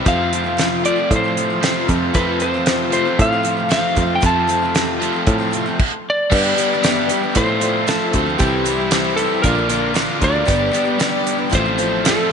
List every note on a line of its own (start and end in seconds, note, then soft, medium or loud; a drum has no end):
0.00 5.77 C6 medium
0.06 0.32 F2 medium
0.06 0.90 F2 loud
0.06 0.32 C3 medium
0.06 0.32 F3 medium
0.06 0.31 A3 medium
0.06 0.33 C4 medium
0.06 0.33 F4 medium
0.06 5.75 A4 medium
0.06 3.16 F5 medium
0.06 0.81 F5 medium
0.06 kick medium
0.06 closed hi-hat medium
0.33 0.45 F3 medium
0.33 0.45 A3 medium
0.33 0.43 C4 medium
0.33 0.42 F4 medium
0.33 closed hi-hat medium
0.44 0.58 F3 soft
0.44 0.58 A3 soft
0.44 0.58 C4 soft
0.44 0.57 F4 medium
0.57 0.97 F2 medium
0.57 0.97 C3 medium
0.57 0.98 F3 medium
0.57 0.96 A3 medium
0.57 0.97 C4 medium
0.57 0.95 F4 medium
0.57 snare loud
0.57 closed hi-hat medium
0.84 1.60 F2 medium
0.84 1.61 C3 medium
0.84 1.62 F3 medium
0.84 1.63 A3 medium
0.84 1.63 C4 medium
0.84 1.64 F4 medium
0.84 1.12 D5 medium
0.84 closed hi-hat medium
0.96 1.24 F3 soft
0.96 1.24 A3 soft
0.96 1.24 C4 soft
0.96 1.23 F4 soft
1.11 1.74 A2 medium
1.11 kick medium
1.11 closed hi-hat medium
1.16 1.87 C5 medium
1.24 1.37 F3 soft
1.24 1.37 A3 soft
1.24 1.37 C4 soft
1.24 1.37 F4 medium
1.37 1.50 F3 medium
1.37 1.51 A3 medium
1.37 1.49 C4 medium
1.37 1.49 F4 medium
1.37 closed hi-hat medium
1.50 1.63 F3 soft
1.50 1.63 A3 soft
1.50 1.63 C4 medium
1.50 1.63 F4 medium
1.63 1.89 F2 medium
1.63 1.89 C3 medium
1.63 1.87 F3 medium
1.63 1.88 A3 medium
1.63 1.90 C4 medium
1.63 1.90 F4 medium
1.63 snare loud
1.63 closed hi-hat medium
1.88 2.10 F2 medium
1.88 2.13 F3 medium
1.88 2.13 A3 medium
1.88 2.13 C4 medium
1.88 2.14 F4 medium
1.88 kick medium
1.88 closed hi-hat medium
2.14 2.40 F2 medium
2.14 2.99 F2 medium
2.14 2.40 C3 medium
2.14 2.39 F3 medium
2.14 2.40 A3 medium
2.14 2.41 C4 medium
2.14 2.41 F4 medium
2.14 2.41 B4 medium
2.14 kick medium
2.14 closed hi-hat medium
2.40 2.54 F3 medium
2.40 2.54 A3 medium
2.40 2.54 C4 medium
2.40 2.53 F4 medium
2.40 2.92 C5 medium
2.40 closed hi-hat medium
2.54 2.66 F3 soft
2.54 2.67 A3 soft
2.54 2.67 C4 soft
2.54 2.67 F4 medium
2.66 3.05 F2 medium
2.66 3.06 C3 medium
2.66 3.06 F3 medium
2.66 3.06 A3 medium
2.66 3.05 C4 medium
2.66 3.04 F4 medium
2.66 snare medium
2.66 closed hi-hat medium
2.90 3.69 F2 medium
2.90 3.69 C3 medium
2.90 3.70 F3 medium
2.90 3.69 A3 medium
2.90 3.69 C4 medium
2.90 3.68 F4 medium
2.90 3.17 C5 medium
2.90 closed hi-hat medium
3.05 3.33 F3 soft
3.05 3.33 A3 soft
3.05 3.32 C4 soft
3.05 3.31 F4 soft
3.18 3.82 A2 loud
3.18 5.76 F5 medium
3.18 3.71 F5 medium
3.18 kick medium
3.18 closed hi-hat medium
3.32 3.42 F3 soft
3.32 3.43 A3 medium
3.32 3.44 C4 soft
3.32 3.45 F4 medium
3.43 3.57 F3 medium
3.43 3.58 A3 medium
3.43 3.57 C4 medium
3.43 3.56 F4 medium
3.43 closed hi-hat medium
3.57 3.69 F3 soft
3.57 3.70 A3 soft
3.57 3.70 C4 soft
3.57 3.70 F4 soft
3.69 3.96 F2 medium
3.69 3.96 C3 medium
3.69 3.94 F3 medium
3.69 3.95 A3 medium
3.69 3.96 C4 medium
3.69 3.97 F4 medium
3.69 4.18 F5 medium
3.69 snare loud
3.69 closed hi-hat medium
3.95 4.18 F2 medium
3.95 4.20 F3 medium
3.95 4.21 A3 medium
3.95 4.21 C4 medium
3.95 4.21 F4 medium
3.95 kick medium
3.95 closed hi-hat medium
4.15 4.23 G5 medium
4.21 4.48 F2 medium
4.21 5.07 F2 loud
4.21 4.48 C3 medium
4.21 4.46 F3 medium
4.21 4.48 A3 medium
4.21 4.48 C4 medium
4.21 4.49 F4 medium
4.21 kick loud
4.21 closed hi-hat medium
4.26 5.77 A5 loud
4.48 4.61 F3 medium
4.48 4.62 A3 medium
4.48 4.62 C4 medium
4.48 4.61 F4 medium
4.48 closed hi-hat medium
4.62 4.75 F3 soft
4.62 4.77 A3 soft
4.62 4.76 C4 soft
4.62 4.75 F4 medium
4.75 5.14 F2 medium
4.75 5.15 C3 medium
4.75 5.15 F3 medium
4.75 5.15 A3 medium
4.75 5.13 C4 medium
4.75 5.11 F4 medium
4.75 snare loud
4.75 closed hi-hat medium
4.99 5.79 F2 medium
4.99 5.79 C3 medium
4.99 5.78 F3 medium
4.99 5.78 A3 medium
4.99 5.78 C4 medium
4.99 5.77 F4 medium
4.99 closed hi-hat medium
5.12 5.41 F3 soft
5.12 5.40 A3 soft
5.12 5.38 C4 soft
5.12 5.37 F4 medium
5.27 5.69 A2 medium
5.27 kick medium
5.27 closed hi-hat medium
5.38 5.50 F3 soft
5.38 5.51 A3 medium
5.38 5.52 C4 medium
5.38 5.52 F4 medium
5.51 5.65 F3 medium
5.51 5.66 A3 medium
5.51 5.66 C4 medium
5.51 5.65 F4 medium
5.51 closed hi-hat medium
5.66 5.81 F3 medium
5.66 5.80 A3 medium
5.66 5.80 C4 medium
5.66 5.79 F4 medium
5.79 kick loud
5.79 crash medium
6.10 7.37 D5 loud
6.31 6.58 G2 medium
6.31 6.53 G2 loud
6.31 6.58 D3 medium
6.31 6.55 G3 medium
6.31 6.57 B3 medium
6.31 6.58 D4 medium
6.31 6.58 G4 medium
6.31 6.73 G4 medium
6.31 7.35 B4 medium
6.31 6.73 B4 medium
6.31 6.73 D5 loud
6.31 7.36 G5 medium
6.31 7.35 D6 medium
6.31 kick loud
6.31 crash loud
6.31 tambourine medium
6.56 6.70 G3 medium
6.56 6.71 B3 medium
6.56 6.72 D4 medium
6.56 6.71 G4 medium
6.56 closed hi-hat medium
6.56 tambourine medium
6.72 6.83 G3 medium
6.72 6.84 B3 medium
6.72 6.84 D4 medium
6.72 6.84 G4 medium
6.83 7.10 G2 medium
6.83 7.10 D3 medium
6.83 7.08 G3 medium
6.83 7.09 B3 medium
6.83 7.10 D4 medium
6.83 7.25 G4 medium
6.83 7.10 G4 loud
6.83 7.25 B4 medium
6.83 7.25 E5 medium
6.83 snare loud
6.83 closed hi-hat medium
6.83 tambourine medium
7.09 7.23 G3 medium
7.09 7.23 B3 medium
7.09 7.22 D4 medium
7.09 7.21 G4 medium
7.09 closed hi-hat medium
7.09 tambourine medium
7.22 7.35 G3 soft
7.22 7.36 B3 soft
7.22 7.35 D4 soft
7.22 7.35 G4 soft
7.34 7.49 A2 medium
7.34 7.99 A2 loud
7.34 7.49 F3 medium
7.34 7.49 A3 medium
7.34 7.47 C4 medium
7.34 7.45 F4 medium
7.34 7.57 F4 medium
7.34 8.39 A4 medium
7.34 7.57 A4 medium
7.34 7.57 C5 medium
7.34 7.85 C5 loud
7.34 8.38 F5 medium
7.34 9.41 C6 medium
7.34 kick medium
7.34 closed hi-hat loud
7.46 7.60 A3 soft
7.46 7.61 C4 soft
7.46 7.60 F4 soft
7.60 7.86 F3 medium
7.60 7.87 A3 medium
7.60 7.87 C4 medium
7.60 7.82 F4 medium
7.60 7.87 F4 medium
7.60 7.83 A4 medium
7.60 7.82 D5 medium
7.60 closed hi-hat medium
7.60 tambourine medium
7.87 8.13 A2 medium
7.87 8.12 F3 medium
7.87 8.14 A3 medium
7.87 8.14 C4 medium
7.87 8.28 F4 medium
7.87 8.14 F4 medium
7.87 8.38 A4 medium
7.87 8.28 C5 medium
7.87 snare loud
7.87 closed hi-hat medium
7.87 tambourine medium
8.12 8.35 D2 medium
8.12 8.27 F3 medium
8.12 8.27 A3 medium
8.12 8.37 F4 medium
8.12 kick medium
8.12 closed hi-hat medium
8.16 8.28 C4 medium
8.16 8.25 F4 medium
8.26 8.40 A3 soft
8.26 8.41 C4 medium
8.26 8.40 F4 medium
8.38 9.24 C2 loud
8.38 8.66 C3 medium
8.38 8.64 E3 medium
8.38 8.65 G3 medium
8.38 8.66 C4 medium
8.38 8.80 E4 medium
8.38 8.67 E4 medium
8.38 9.42 G4 medium
8.38 9.14 G4 medium
8.38 8.80 G4 medium
8.38 8.80 C5 loud
8.38 9.42 E5 medium
8.38 kick loud
8.38 closed hi-hat medium
8.38 tambourine medium
8.64 8.79 E3 medium
8.64 8.79 G3 medium
8.64 8.79 C4 medium
8.64 8.93 E4 medium
8.64 closed hi-hat medium
8.64 tambourine medium
8.69 8.77 E4 medium
8.78 8.91 G3 soft
8.78 8.92 C4 soft
8.78 8.91 E4 medium
8.90 9.18 C3 medium
8.90 9.18 E3 medium
8.90 9.18 G3 medium
8.90 9.19 C4 medium
8.90 9.32 E4 medium
8.90 9.19 E4 medium
8.90 9.32 G4 medium
8.90 9.32 C5 medium
8.90 snare loud
8.90 closed hi-hat medium
8.90 tambourine medium
9.16 9.32 E3 medium
9.16 9.32 G3 medium
9.16 9.42 A4 medium
9.16 closed hi-hat medium
9.16 tambourine medium
9.21 9.33 C4 medium
9.21 9.32 E4 medium
9.33 9.45 G3 soft
9.33 9.46 C4 soft
9.33 9.45 E4 soft
9.42 10.07 A#1 medium
9.42 9.57 A#2 medium
9.42 9.58 D3 medium
9.42 9.57 A#3 medium
9.42 9.65 F4 medium
9.42 9.92 A#4 medium
9.42 10.47 A#4 medium
9.42 9.65 A#4 medium
9.42 9.65 D5 medium
9.42 10.47 F5 medium
9.42 11.50 D6 medium
9.42 kick medium
9.42 closed hi-hat medium
9.47 9.57 D4 medium
9.47 9.54 F4 medium
9.55 9.68 A#3 soft
9.55 9.70 D4 soft
9.55 9.69 F4 medium
9.69 9.93 D3 medium
9.69 9.94 A#3 medium
9.69 9.95 D4 medium
9.69 9.90 F4 medium
9.69 9.95 F4 medium
9.69 9.90 A#4 medium
9.69 9.90 D5 medium
9.69 closed hi-hat medium
9.69 tambourine medium
9.94 10.21 A#2 medium
9.94 10.20 D3 medium
9.94 10.22 A#3 medium
9.94 10.22 D4 medium
9.94 10.36 F4 medium
9.94 10.22 F4 medium
9.94 10.36 A#4 medium
9.94 10.36 D5 medium
9.94 snare loud
9.94 closed hi-hat medium
9.94 tambourine loud
10.20 10.43 D2 loud
10.20 10.35 D3 medium
10.20 10.35 A#3 medium
10.20 10.45 F4 medium
10.20 kick medium
10.20 closed hi-hat medium
10.24 10.34 D4 medium
10.24 10.31 F4 medium
10.24 11.49 D5 loud
10.32 10.47 A#3 soft
10.32 10.45 D4 soft
10.32 10.47 F4 medium
10.45 10.69 G1 loud
10.45 10.73 G2 medium
10.45 10.73 D3 medium
10.45 10.70 G3 medium
10.45 10.72 B3 medium
10.45 10.72 D4 medium
10.45 10.88 G4 medium
10.45 10.73 G4 medium
10.45 10.88 B4 medium
10.45 10.88 D5 loud
10.45 kick loud
10.45 closed hi-hat medium
10.45 tambourine medium
10.51 11.53 B4 medium
10.51 11.53 G5 medium
10.71 10.86 G3 medium
10.71 10.85 B3 medium
10.71 10.84 D4 medium
10.71 10.83 G4 medium
10.71 closed hi-hat medium
10.71 tambourine medium
10.84 10.99 G3 medium
10.84 10.99 B3 soft
10.84 10.99 D4 medium
10.84 10.99 G4 medium
10.99 11.26 G2 medium
10.99 11.26 D3 medium
10.99 11.23 G3 medium
10.99 11.25 B3 medium
10.99 11.25 D4 medium
10.99 11.40 G4 medium
10.99 11.27 G4 medium
10.99 11.41 B4 medium
10.99 11.41 D5 medium
10.99 snare loud
10.99 closed hi-hat medium
10.99 tambourine medium
11.24 11.38 G3 medium
11.24 11.37 B3 medium
11.24 11.37 D4 medium
11.24 closed hi-hat medium
11.24 tambourine medium
11.28 11.36 G4 medium
11.37 11.50 G3 soft
11.37 11.50 B3 soft
11.37 11.51 D4 soft
11.37 11.51 G4 soft
11.49 12.16 A1 medium
11.49 11.64 A2 medium
11.49 11.65 F3 medium
11.49 11.65 A3 medium
11.49 11.65 C4 medium
11.49 11.64 F4 medium
11.49 11.73 F4 medium
11.49 12.32 A4 medium
11.49 11.72 A4 medium
11.49 11.73 C5 medium
11.49 12.32 F5 medium
11.49 12.32 C6 medium
11.49 kick medium
11.49 closed hi-hat medium
11.55 12.07 C5 medium
11.65 11.79 A3 medium
11.65 11.79 C4 soft
11.65 11.78 F4 medium
11.76 12.04 C4 medium
11.76 12.05 F4 medium
11.76 11.99 F4 medium
11.76 11.99 A4 medium
11.76 11.99 C5 medium
11.76 closed hi-hat medium
11.76 tambourine medium
11.80 12.05 F3 medium
11.80 12.05 A3 medium
11.80 12.06 C4 medium
11.80 12.07 F4 medium
12.04 12.31 A2 medium
12.04 12.29 F3 medium
12.04 12.30 A3 medium
12.04 12.32 F4 medium
12.04 12.32 A4 medium
12.04 12.32 D5 medium
12.04 snare loud
12.04 closed hi-hat loud
12.04 tambourine medium
12.08 12.32 C4 medium
12.08 12.32 F4 medium
12.08 12.32 A4 medium